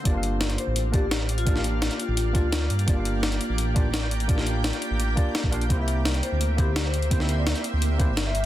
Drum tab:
HH |x-x-xxx-x-x-x-xx|x-x-xxx-x-x-x-xx|x-x-xxx-x-x-x-xx|x-x-xxx-x-x-x-xx|
SD |----o-------o---|-o--o-------o---|----o-------o---|-o--o-------o---|
BD |o---------o-----|o---------o-----|o---------o-----|o---------o--o--|

HH |x-x-xxx-x-x-x-xx|x-x-xxx-x-x-x-x-|
SD |----o-------o---|-o--o-------o---|
BD |o---------o-----|o---------o-----|